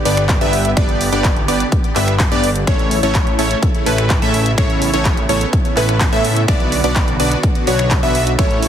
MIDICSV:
0, 0, Header, 1, 6, 480
1, 0, Start_track
1, 0, Tempo, 476190
1, 774, Time_signature, 4, 2, 24, 8
1, 8750, End_track
2, 0, Start_track
2, 0, Title_t, "Digital synth lead"
2, 0, Program_c, 0, 84
2, 55, Note_on_c, 0, 74, 84
2, 386, Note_off_c, 0, 74, 0
2, 415, Note_on_c, 0, 76, 109
2, 709, Note_off_c, 0, 76, 0
2, 775, Note_on_c, 0, 74, 99
2, 1106, Note_off_c, 0, 74, 0
2, 1135, Note_on_c, 0, 74, 90
2, 1429, Note_off_c, 0, 74, 0
2, 1495, Note_on_c, 0, 74, 83
2, 1679, Note_off_c, 0, 74, 0
2, 1976, Note_on_c, 0, 76, 91
2, 2159, Note_off_c, 0, 76, 0
2, 2335, Note_on_c, 0, 74, 114
2, 2519, Note_off_c, 0, 74, 0
2, 2695, Note_on_c, 0, 73, 94
2, 3026, Note_off_c, 0, 73, 0
2, 3055, Note_on_c, 0, 73, 88
2, 3349, Note_off_c, 0, 73, 0
2, 3415, Note_on_c, 0, 73, 83
2, 3599, Note_off_c, 0, 73, 0
2, 3895, Note_on_c, 0, 71, 86
2, 4226, Note_off_c, 0, 71, 0
2, 4255, Note_on_c, 0, 76, 110
2, 4549, Note_off_c, 0, 76, 0
2, 4615, Note_on_c, 0, 73, 97
2, 4946, Note_off_c, 0, 73, 0
2, 4975, Note_on_c, 0, 73, 89
2, 5269, Note_off_c, 0, 73, 0
2, 5335, Note_on_c, 0, 73, 86
2, 5519, Note_off_c, 0, 73, 0
2, 5814, Note_on_c, 0, 71, 83
2, 6146, Note_off_c, 0, 71, 0
2, 6175, Note_on_c, 0, 76, 113
2, 6469, Note_off_c, 0, 76, 0
2, 6535, Note_on_c, 0, 74, 96
2, 6866, Note_off_c, 0, 74, 0
2, 6894, Note_on_c, 0, 74, 89
2, 7189, Note_off_c, 0, 74, 0
2, 7255, Note_on_c, 0, 74, 84
2, 7439, Note_off_c, 0, 74, 0
2, 7734, Note_on_c, 0, 73, 82
2, 8066, Note_off_c, 0, 73, 0
2, 8094, Note_on_c, 0, 76, 114
2, 8389, Note_off_c, 0, 76, 0
2, 8455, Note_on_c, 0, 73, 95
2, 8750, Note_off_c, 0, 73, 0
2, 8750, End_track
3, 0, Start_track
3, 0, Title_t, "Supersaw synth"
3, 0, Program_c, 1, 81
3, 54, Note_on_c, 1, 59, 76
3, 54, Note_on_c, 1, 62, 70
3, 54, Note_on_c, 1, 67, 71
3, 54, Note_on_c, 1, 71, 71
3, 54, Note_on_c, 1, 74, 86
3, 385, Note_off_c, 1, 59, 0
3, 385, Note_off_c, 1, 67, 0
3, 386, Note_off_c, 1, 62, 0
3, 386, Note_off_c, 1, 71, 0
3, 386, Note_off_c, 1, 74, 0
3, 414, Note_on_c, 1, 59, 103
3, 414, Note_on_c, 1, 62, 93
3, 414, Note_on_c, 1, 67, 91
3, 414, Note_on_c, 1, 71, 90
3, 414, Note_on_c, 1, 76, 113
3, 709, Note_off_c, 1, 59, 0
3, 709, Note_off_c, 1, 62, 0
3, 709, Note_off_c, 1, 67, 0
3, 709, Note_off_c, 1, 71, 0
3, 709, Note_off_c, 1, 76, 0
3, 774, Note_on_c, 1, 59, 84
3, 775, Note_on_c, 1, 62, 77
3, 775, Note_on_c, 1, 67, 76
3, 775, Note_on_c, 1, 71, 81
3, 775, Note_on_c, 1, 74, 96
3, 1106, Note_off_c, 1, 59, 0
3, 1106, Note_off_c, 1, 62, 0
3, 1106, Note_off_c, 1, 67, 0
3, 1106, Note_off_c, 1, 71, 0
3, 1106, Note_off_c, 1, 74, 0
3, 1133, Note_on_c, 1, 67, 77
3, 1133, Note_on_c, 1, 71, 80
3, 1134, Note_on_c, 1, 59, 85
3, 1134, Note_on_c, 1, 62, 77
3, 1134, Note_on_c, 1, 74, 96
3, 1428, Note_off_c, 1, 67, 0
3, 1428, Note_off_c, 1, 71, 0
3, 1429, Note_off_c, 1, 59, 0
3, 1429, Note_off_c, 1, 62, 0
3, 1429, Note_off_c, 1, 74, 0
3, 1494, Note_on_c, 1, 59, 80
3, 1494, Note_on_c, 1, 62, 71
3, 1494, Note_on_c, 1, 67, 73
3, 1494, Note_on_c, 1, 71, 71
3, 1494, Note_on_c, 1, 74, 84
3, 1678, Note_off_c, 1, 59, 0
3, 1678, Note_off_c, 1, 62, 0
3, 1678, Note_off_c, 1, 67, 0
3, 1678, Note_off_c, 1, 71, 0
3, 1678, Note_off_c, 1, 74, 0
3, 1974, Note_on_c, 1, 59, 78
3, 1974, Note_on_c, 1, 62, 74
3, 1974, Note_on_c, 1, 67, 73
3, 1974, Note_on_c, 1, 71, 74
3, 1974, Note_on_c, 1, 76, 88
3, 2158, Note_off_c, 1, 59, 0
3, 2158, Note_off_c, 1, 62, 0
3, 2158, Note_off_c, 1, 67, 0
3, 2158, Note_off_c, 1, 71, 0
3, 2158, Note_off_c, 1, 76, 0
3, 2334, Note_on_c, 1, 59, 101
3, 2334, Note_on_c, 1, 62, 91
3, 2334, Note_on_c, 1, 67, 91
3, 2334, Note_on_c, 1, 71, 93
3, 2334, Note_on_c, 1, 74, 113
3, 2518, Note_off_c, 1, 59, 0
3, 2518, Note_off_c, 1, 62, 0
3, 2518, Note_off_c, 1, 67, 0
3, 2518, Note_off_c, 1, 74, 0
3, 2519, Note_off_c, 1, 71, 0
3, 2693, Note_on_c, 1, 57, 86
3, 2693, Note_on_c, 1, 64, 78
3, 2694, Note_on_c, 1, 61, 78
3, 2694, Note_on_c, 1, 69, 80
3, 2694, Note_on_c, 1, 73, 95
3, 3025, Note_off_c, 1, 57, 0
3, 3025, Note_off_c, 1, 61, 0
3, 3025, Note_off_c, 1, 64, 0
3, 3025, Note_off_c, 1, 69, 0
3, 3025, Note_off_c, 1, 73, 0
3, 3055, Note_on_c, 1, 57, 82
3, 3055, Note_on_c, 1, 61, 79
3, 3055, Note_on_c, 1, 64, 79
3, 3055, Note_on_c, 1, 69, 77
3, 3056, Note_on_c, 1, 73, 93
3, 3349, Note_off_c, 1, 57, 0
3, 3349, Note_off_c, 1, 61, 0
3, 3349, Note_off_c, 1, 64, 0
3, 3349, Note_off_c, 1, 69, 0
3, 3350, Note_off_c, 1, 73, 0
3, 3414, Note_on_c, 1, 57, 77
3, 3414, Note_on_c, 1, 61, 72
3, 3414, Note_on_c, 1, 69, 71
3, 3414, Note_on_c, 1, 73, 84
3, 3415, Note_on_c, 1, 64, 73
3, 3598, Note_off_c, 1, 57, 0
3, 3598, Note_off_c, 1, 69, 0
3, 3598, Note_off_c, 1, 73, 0
3, 3599, Note_off_c, 1, 61, 0
3, 3599, Note_off_c, 1, 64, 0
3, 3894, Note_on_c, 1, 64, 71
3, 3894, Note_on_c, 1, 71, 85
3, 3895, Note_on_c, 1, 57, 74
3, 3895, Note_on_c, 1, 61, 71
3, 3895, Note_on_c, 1, 69, 70
3, 4226, Note_off_c, 1, 57, 0
3, 4226, Note_off_c, 1, 61, 0
3, 4226, Note_off_c, 1, 64, 0
3, 4226, Note_off_c, 1, 69, 0
3, 4226, Note_off_c, 1, 71, 0
3, 4254, Note_on_c, 1, 76, 110
3, 4255, Note_on_c, 1, 57, 100
3, 4255, Note_on_c, 1, 61, 93
3, 4255, Note_on_c, 1, 64, 91
3, 4255, Note_on_c, 1, 69, 92
3, 4549, Note_off_c, 1, 57, 0
3, 4549, Note_off_c, 1, 61, 0
3, 4549, Note_off_c, 1, 64, 0
3, 4549, Note_off_c, 1, 69, 0
3, 4549, Note_off_c, 1, 76, 0
3, 4614, Note_on_c, 1, 57, 84
3, 4614, Note_on_c, 1, 61, 79
3, 4614, Note_on_c, 1, 64, 80
3, 4614, Note_on_c, 1, 69, 80
3, 4614, Note_on_c, 1, 73, 96
3, 4945, Note_off_c, 1, 57, 0
3, 4945, Note_off_c, 1, 61, 0
3, 4945, Note_off_c, 1, 64, 0
3, 4946, Note_off_c, 1, 69, 0
3, 4946, Note_off_c, 1, 73, 0
3, 4975, Note_on_c, 1, 57, 86
3, 4975, Note_on_c, 1, 61, 80
3, 4975, Note_on_c, 1, 64, 78
3, 4975, Note_on_c, 1, 69, 77
3, 4975, Note_on_c, 1, 73, 96
3, 5269, Note_off_c, 1, 57, 0
3, 5269, Note_off_c, 1, 61, 0
3, 5269, Note_off_c, 1, 64, 0
3, 5269, Note_off_c, 1, 69, 0
3, 5269, Note_off_c, 1, 73, 0
3, 5334, Note_on_c, 1, 57, 79
3, 5334, Note_on_c, 1, 61, 73
3, 5334, Note_on_c, 1, 73, 87
3, 5335, Note_on_c, 1, 64, 74
3, 5335, Note_on_c, 1, 69, 74
3, 5519, Note_off_c, 1, 57, 0
3, 5519, Note_off_c, 1, 61, 0
3, 5519, Note_off_c, 1, 64, 0
3, 5519, Note_off_c, 1, 69, 0
3, 5519, Note_off_c, 1, 73, 0
3, 5814, Note_on_c, 1, 57, 77
3, 5814, Note_on_c, 1, 61, 71
3, 5814, Note_on_c, 1, 64, 72
3, 5814, Note_on_c, 1, 69, 69
3, 5814, Note_on_c, 1, 71, 83
3, 6145, Note_off_c, 1, 57, 0
3, 6145, Note_off_c, 1, 64, 0
3, 6145, Note_off_c, 1, 71, 0
3, 6146, Note_off_c, 1, 61, 0
3, 6146, Note_off_c, 1, 69, 0
3, 6175, Note_on_c, 1, 57, 102
3, 6175, Note_on_c, 1, 61, 92
3, 6175, Note_on_c, 1, 64, 93
3, 6175, Note_on_c, 1, 69, 92
3, 6175, Note_on_c, 1, 76, 107
3, 6469, Note_off_c, 1, 57, 0
3, 6469, Note_off_c, 1, 61, 0
3, 6469, Note_off_c, 1, 64, 0
3, 6469, Note_off_c, 1, 69, 0
3, 6469, Note_off_c, 1, 76, 0
3, 6535, Note_on_c, 1, 59, 87
3, 6535, Note_on_c, 1, 62, 78
3, 6535, Note_on_c, 1, 66, 77
3, 6535, Note_on_c, 1, 71, 80
3, 6535, Note_on_c, 1, 74, 98
3, 6866, Note_off_c, 1, 59, 0
3, 6866, Note_off_c, 1, 62, 0
3, 6866, Note_off_c, 1, 66, 0
3, 6866, Note_off_c, 1, 71, 0
3, 6866, Note_off_c, 1, 74, 0
3, 6895, Note_on_c, 1, 59, 85
3, 6895, Note_on_c, 1, 62, 80
3, 6895, Note_on_c, 1, 66, 78
3, 6895, Note_on_c, 1, 71, 77
3, 6895, Note_on_c, 1, 74, 92
3, 7189, Note_off_c, 1, 59, 0
3, 7189, Note_off_c, 1, 62, 0
3, 7189, Note_off_c, 1, 66, 0
3, 7189, Note_off_c, 1, 71, 0
3, 7189, Note_off_c, 1, 74, 0
3, 7254, Note_on_c, 1, 66, 72
3, 7255, Note_on_c, 1, 59, 78
3, 7255, Note_on_c, 1, 62, 73
3, 7255, Note_on_c, 1, 71, 72
3, 7255, Note_on_c, 1, 74, 88
3, 7439, Note_off_c, 1, 59, 0
3, 7439, Note_off_c, 1, 62, 0
3, 7439, Note_off_c, 1, 66, 0
3, 7439, Note_off_c, 1, 71, 0
3, 7439, Note_off_c, 1, 74, 0
3, 7734, Note_on_c, 1, 62, 72
3, 7734, Note_on_c, 1, 66, 71
3, 7734, Note_on_c, 1, 73, 82
3, 7735, Note_on_c, 1, 59, 78
3, 7735, Note_on_c, 1, 71, 70
3, 8066, Note_off_c, 1, 59, 0
3, 8066, Note_off_c, 1, 62, 0
3, 8066, Note_off_c, 1, 66, 0
3, 8066, Note_off_c, 1, 71, 0
3, 8066, Note_off_c, 1, 73, 0
3, 8093, Note_on_c, 1, 59, 98
3, 8093, Note_on_c, 1, 62, 94
3, 8093, Note_on_c, 1, 66, 91
3, 8093, Note_on_c, 1, 71, 92
3, 8093, Note_on_c, 1, 76, 110
3, 8388, Note_off_c, 1, 59, 0
3, 8388, Note_off_c, 1, 62, 0
3, 8388, Note_off_c, 1, 71, 0
3, 8389, Note_off_c, 1, 66, 0
3, 8389, Note_off_c, 1, 76, 0
3, 8453, Note_on_c, 1, 69, 81
3, 8454, Note_on_c, 1, 57, 88
3, 8454, Note_on_c, 1, 61, 78
3, 8454, Note_on_c, 1, 64, 79
3, 8454, Note_on_c, 1, 73, 93
3, 8750, Note_off_c, 1, 57, 0
3, 8750, Note_off_c, 1, 61, 0
3, 8750, Note_off_c, 1, 64, 0
3, 8750, Note_off_c, 1, 69, 0
3, 8750, Note_off_c, 1, 73, 0
3, 8750, End_track
4, 0, Start_track
4, 0, Title_t, "Supersaw synth"
4, 0, Program_c, 2, 81
4, 0, Note_on_c, 2, 50, 83
4, 0, Note_on_c, 2, 59, 75
4, 0, Note_on_c, 2, 67, 90
4, 2654, Note_off_c, 2, 50, 0
4, 2656, Note_off_c, 2, 59, 0
4, 2656, Note_off_c, 2, 67, 0
4, 2694, Note_on_c, 2, 49, 81
4, 2694, Note_on_c, 2, 57, 75
4, 2694, Note_on_c, 2, 64, 91
4, 4595, Note_off_c, 2, 57, 0
4, 4612, Note_on_c, 2, 59, 76
4, 6496, Note_off_c, 2, 49, 0
4, 6496, Note_off_c, 2, 64, 0
4, 6533, Note_on_c, 2, 66, 89
4, 6534, Note_on_c, 2, 50, 83
4, 8415, Note_off_c, 2, 59, 0
4, 8435, Note_off_c, 2, 50, 0
4, 8435, Note_off_c, 2, 66, 0
4, 8454, Note_on_c, 2, 49, 82
4, 8454, Note_on_c, 2, 57, 75
4, 8454, Note_on_c, 2, 64, 93
4, 8750, Note_off_c, 2, 49, 0
4, 8750, Note_off_c, 2, 57, 0
4, 8750, Note_off_c, 2, 64, 0
4, 8750, End_track
5, 0, Start_track
5, 0, Title_t, "Analog synth bass"
5, 0, Program_c, 3, 38
5, 54, Note_on_c, 3, 31, 98
5, 390, Note_off_c, 3, 31, 0
5, 414, Note_on_c, 3, 31, 98
5, 750, Note_off_c, 3, 31, 0
5, 774, Note_on_c, 3, 31, 99
5, 1110, Note_off_c, 3, 31, 0
5, 1134, Note_on_c, 3, 31, 100
5, 1470, Note_off_c, 3, 31, 0
5, 1494, Note_on_c, 3, 31, 99
5, 1654, Note_off_c, 3, 31, 0
5, 1974, Note_on_c, 3, 31, 99
5, 2310, Note_off_c, 3, 31, 0
5, 2334, Note_on_c, 3, 31, 98
5, 2670, Note_off_c, 3, 31, 0
5, 2695, Note_on_c, 3, 33, 97
5, 3031, Note_off_c, 3, 33, 0
5, 3054, Note_on_c, 3, 33, 99
5, 3390, Note_off_c, 3, 33, 0
5, 3414, Note_on_c, 3, 33, 98
5, 3574, Note_off_c, 3, 33, 0
5, 3894, Note_on_c, 3, 33, 96
5, 4230, Note_off_c, 3, 33, 0
5, 4254, Note_on_c, 3, 33, 98
5, 4590, Note_off_c, 3, 33, 0
5, 4614, Note_on_c, 3, 33, 98
5, 4950, Note_off_c, 3, 33, 0
5, 4974, Note_on_c, 3, 33, 97
5, 5310, Note_off_c, 3, 33, 0
5, 5333, Note_on_c, 3, 33, 99
5, 5494, Note_off_c, 3, 33, 0
5, 5814, Note_on_c, 3, 33, 97
5, 6150, Note_off_c, 3, 33, 0
5, 6173, Note_on_c, 3, 45, 100
5, 6510, Note_off_c, 3, 45, 0
5, 6534, Note_on_c, 3, 35, 100
5, 6870, Note_off_c, 3, 35, 0
5, 6894, Note_on_c, 3, 35, 101
5, 7230, Note_off_c, 3, 35, 0
5, 7254, Note_on_c, 3, 35, 100
5, 7415, Note_off_c, 3, 35, 0
5, 7735, Note_on_c, 3, 35, 98
5, 8071, Note_off_c, 3, 35, 0
5, 8094, Note_on_c, 3, 35, 96
5, 8430, Note_off_c, 3, 35, 0
5, 8453, Note_on_c, 3, 33, 98
5, 8750, Note_off_c, 3, 33, 0
5, 8750, End_track
6, 0, Start_track
6, 0, Title_t, "Drums"
6, 55, Note_on_c, 9, 46, 110
6, 156, Note_off_c, 9, 46, 0
6, 175, Note_on_c, 9, 26, 59
6, 175, Note_on_c, 9, 42, 54
6, 275, Note_off_c, 9, 26, 0
6, 275, Note_off_c, 9, 42, 0
6, 292, Note_on_c, 9, 39, 127
6, 294, Note_on_c, 9, 36, 127
6, 295, Note_on_c, 9, 42, 54
6, 393, Note_off_c, 9, 39, 0
6, 395, Note_off_c, 9, 36, 0
6, 396, Note_off_c, 9, 42, 0
6, 415, Note_on_c, 9, 42, 26
6, 516, Note_off_c, 9, 42, 0
6, 535, Note_on_c, 9, 46, 99
6, 636, Note_off_c, 9, 46, 0
6, 655, Note_on_c, 9, 42, 52
6, 756, Note_off_c, 9, 42, 0
6, 774, Note_on_c, 9, 36, 123
6, 776, Note_on_c, 9, 26, 80
6, 776, Note_on_c, 9, 42, 53
6, 875, Note_off_c, 9, 36, 0
6, 877, Note_off_c, 9, 26, 0
6, 877, Note_off_c, 9, 42, 0
6, 895, Note_on_c, 9, 42, 26
6, 996, Note_off_c, 9, 42, 0
6, 1015, Note_on_c, 9, 46, 110
6, 1116, Note_off_c, 9, 46, 0
6, 1136, Note_on_c, 9, 42, 51
6, 1237, Note_off_c, 9, 42, 0
6, 1254, Note_on_c, 9, 36, 127
6, 1254, Note_on_c, 9, 39, 119
6, 1256, Note_on_c, 9, 42, 51
6, 1355, Note_off_c, 9, 36, 0
6, 1355, Note_off_c, 9, 39, 0
6, 1357, Note_off_c, 9, 42, 0
6, 1376, Note_on_c, 9, 42, 26
6, 1477, Note_off_c, 9, 42, 0
6, 1496, Note_on_c, 9, 46, 100
6, 1597, Note_off_c, 9, 46, 0
6, 1616, Note_on_c, 9, 42, 50
6, 1717, Note_off_c, 9, 42, 0
6, 1735, Note_on_c, 9, 36, 127
6, 1736, Note_on_c, 9, 42, 49
6, 1836, Note_off_c, 9, 36, 0
6, 1837, Note_off_c, 9, 42, 0
6, 1856, Note_on_c, 9, 42, 25
6, 1957, Note_off_c, 9, 42, 0
6, 1973, Note_on_c, 9, 39, 36
6, 1975, Note_on_c, 9, 46, 110
6, 2074, Note_off_c, 9, 39, 0
6, 2076, Note_off_c, 9, 46, 0
6, 2095, Note_on_c, 9, 26, 61
6, 2095, Note_on_c, 9, 42, 53
6, 2196, Note_off_c, 9, 26, 0
6, 2196, Note_off_c, 9, 42, 0
6, 2213, Note_on_c, 9, 39, 123
6, 2215, Note_on_c, 9, 36, 126
6, 2215, Note_on_c, 9, 42, 53
6, 2314, Note_off_c, 9, 39, 0
6, 2315, Note_off_c, 9, 36, 0
6, 2316, Note_off_c, 9, 42, 0
6, 2336, Note_on_c, 9, 42, 26
6, 2436, Note_off_c, 9, 42, 0
6, 2455, Note_on_c, 9, 46, 101
6, 2556, Note_off_c, 9, 46, 0
6, 2576, Note_on_c, 9, 42, 50
6, 2677, Note_off_c, 9, 42, 0
6, 2695, Note_on_c, 9, 36, 118
6, 2696, Note_on_c, 9, 26, 83
6, 2696, Note_on_c, 9, 42, 52
6, 2795, Note_off_c, 9, 36, 0
6, 2796, Note_off_c, 9, 26, 0
6, 2796, Note_off_c, 9, 42, 0
6, 2816, Note_on_c, 9, 42, 25
6, 2917, Note_off_c, 9, 42, 0
6, 2935, Note_on_c, 9, 46, 106
6, 3036, Note_off_c, 9, 46, 0
6, 3055, Note_on_c, 9, 42, 50
6, 3156, Note_off_c, 9, 42, 0
6, 3173, Note_on_c, 9, 39, 117
6, 3175, Note_on_c, 9, 36, 126
6, 3176, Note_on_c, 9, 42, 51
6, 3274, Note_off_c, 9, 39, 0
6, 3275, Note_off_c, 9, 36, 0
6, 3276, Note_off_c, 9, 42, 0
6, 3296, Note_on_c, 9, 42, 26
6, 3396, Note_off_c, 9, 42, 0
6, 3415, Note_on_c, 9, 46, 97
6, 3516, Note_off_c, 9, 46, 0
6, 3536, Note_on_c, 9, 42, 52
6, 3637, Note_off_c, 9, 42, 0
6, 3655, Note_on_c, 9, 36, 119
6, 3656, Note_on_c, 9, 42, 51
6, 3755, Note_off_c, 9, 36, 0
6, 3756, Note_off_c, 9, 42, 0
6, 3776, Note_on_c, 9, 42, 25
6, 3876, Note_off_c, 9, 42, 0
6, 3895, Note_on_c, 9, 46, 102
6, 3996, Note_off_c, 9, 46, 0
6, 4015, Note_on_c, 9, 26, 63
6, 4015, Note_on_c, 9, 42, 51
6, 4116, Note_off_c, 9, 26, 0
6, 4116, Note_off_c, 9, 42, 0
6, 4133, Note_on_c, 9, 39, 121
6, 4135, Note_on_c, 9, 36, 120
6, 4135, Note_on_c, 9, 42, 53
6, 4234, Note_off_c, 9, 39, 0
6, 4235, Note_off_c, 9, 36, 0
6, 4236, Note_off_c, 9, 42, 0
6, 4256, Note_on_c, 9, 42, 25
6, 4356, Note_off_c, 9, 42, 0
6, 4375, Note_on_c, 9, 46, 97
6, 4476, Note_off_c, 9, 46, 0
6, 4495, Note_on_c, 9, 42, 52
6, 4596, Note_off_c, 9, 42, 0
6, 4614, Note_on_c, 9, 36, 112
6, 4616, Note_on_c, 9, 26, 86
6, 4616, Note_on_c, 9, 42, 54
6, 4715, Note_off_c, 9, 36, 0
6, 4716, Note_off_c, 9, 26, 0
6, 4716, Note_off_c, 9, 42, 0
6, 4736, Note_on_c, 9, 42, 27
6, 4837, Note_off_c, 9, 42, 0
6, 4856, Note_on_c, 9, 46, 102
6, 4956, Note_off_c, 9, 46, 0
6, 4975, Note_on_c, 9, 42, 52
6, 5076, Note_off_c, 9, 42, 0
6, 5092, Note_on_c, 9, 39, 117
6, 5094, Note_on_c, 9, 36, 119
6, 5095, Note_on_c, 9, 42, 53
6, 5193, Note_off_c, 9, 39, 0
6, 5195, Note_off_c, 9, 36, 0
6, 5195, Note_off_c, 9, 42, 0
6, 5215, Note_on_c, 9, 42, 27
6, 5316, Note_off_c, 9, 42, 0
6, 5335, Note_on_c, 9, 46, 93
6, 5435, Note_off_c, 9, 46, 0
6, 5455, Note_on_c, 9, 42, 54
6, 5556, Note_off_c, 9, 42, 0
6, 5574, Note_on_c, 9, 36, 119
6, 5575, Note_on_c, 9, 42, 54
6, 5675, Note_off_c, 9, 36, 0
6, 5676, Note_off_c, 9, 42, 0
6, 5696, Note_on_c, 9, 42, 26
6, 5797, Note_off_c, 9, 42, 0
6, 5813, Note_on_c, 9, 39, 34
6, 5816, Note_on_c, 9, 46, 99
6, 5914, Note_off_c, 9, 39, 0
6, 5917, Note_off_c, 9, 46, 0
6, 5936, Note_on_c, 9, 26, 64
6, 5936, Note_on_c, 9, 42, 53
6, 6036, Note_off_c, 9, 26, 0
6, 6036, Note_off_c, 9, 42, 0
6, 6053, Note_on_c, 9, 39, 122
6, 6054, Note_on_c, 9, 36, 118
6, 6055, Note_on_c, 9, 42, 54
6, 6154, Note_off_c, 9, 39, 0
6, 6155, Note_off_c, 9, 36, 0
6, 6156, Note_off_c, 9, 42, 0
6, 6176, Note_on_c, 9, 42, 27
6, 6277, Note_off_c, 9, 42, 0
6, 6296, Note_on_c, 9, 46, 92
6, 6397, Note_off_c, 9, 46, 0
6, 6416, Note_on_c, 9, 42, 53
6, 6517, Note_off_c, 9, 42, 0
6, 6534, Note_on_c, 9, 36, 117
6, 6536, Note_on_c, 9, 26, 86
6, 6536, Note_on_c, 9, 42, 58
6, 6635, Note_off_c, 9, 36, 0
6, 6636, Note_off_c, 9, 26, 0
6, 6636, Note_off_c, 9, 42, 0
6, 6656, Note_on_c, 9, 42, 27
6, 6756, Note_off_c, 9, 42, 0
6, 6776, Note_on_c, 9, 46, 99
6, 6876, Note_off_c, 9, 46, 0
6, 6895, Note_on_c, 9, 42, 55
6, 6996, Note_off_c, 9, 42, 0
6, 7013, Note_on_c, 9, 39, 118
6, 7014, Note_on_c, 9, 36, 118
6, 7015, Note_on_c, 9, 42, 55
6, 7113, Note_off_c, 9, 39, 0
6, 7115, Note_off_c, 9, 36, 0
6, 7116, Note_off_c, 9, 42, 0
6, 7135, Note_on_c, 9, 42, 27
6, 7236, Note_off_c, 9, 42, 0
6, 7254, Note_on_c, 9, 46, 91
6, 7355, Note_off_c, 9, 46, 0
6, 7374, Note_on_c, 9, 42, 55
6, 7475, Note_off_c, 9, 42, 0
6, 7493, Note_on_c, 9, 42, 54
6, 7494, Note_on_c, 9, 36, 115
6, 7594, Note_off_c, 9, 42, 0
6, 7595, Note_off_c, 9, 36, 0
6, 7614, Note_on_c, 9, 42, 28
6, 7714, Note_off_c, 9, 42, 0
6, 7733, Note_on_c, 9, 46, 101
6, 7834, Note_off_c, 9, 46, 0
6, 7854, Note_on_c, 9, 26, 66
6, 7854, Note_on_c, 9, 42, 56
6, 7955, Note_off_c, 9, 26, 0
6, 7955, Note_off_c, 9, 42, 0
6, 7971, Note_on_c, 9, 39, 123
6, 7974, Note_on_c, 9, 36, 118
6, 7974, Note_on_c, 9, 42, 57
6, 8072, Note_off_c, 9, 39, 0
6, 8075, Note_off_c, 9, 36, 0
6, 8075, Note_off_c, 9, 42, 0
6, 8095, Note_on_c, 9, 42, 28
6, 8196, Note_off_c, 9, 42, 0
6, 8215, Note_on_c, 9, 46, 91
6, 8315, Note_off_c, 9, 46, 0
6, 8335, Note_on_c, 9, 42, 55
6, 8436, Note_off_c, 9, 42, 0
6, 8454, Note_on_c, 9, 36, 116
6, 8455, Note_on_c, 9, 26, 86
6, 8455, Note_on_c, 9, 42, 60
6, 8555, Note_off_c, 9, 36, 0
6, 8556, Note_off_c, 9, 26, 0
6, 8556, Note_off_c, 9, 42, 0
6, 8575, Note_on_c, 9, 42, 28
6, 8676, Note_off_c, 9, 42, 0
6, 8694, Note_on_c, 9, 46, 101
6, 8750, Note_off_c, 9, 46, 0
6, 8750, End_track
0, 0, End_of_file